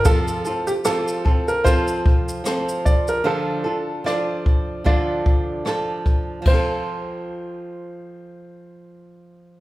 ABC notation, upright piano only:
X:1
M:4/4
L:1/16
Q:"Swing 16ths" 1/4=75
K:F
V:1 name="Upright piano"
A3 G A3 B c6 d B | A4 d4 d6 z2 | c16 |]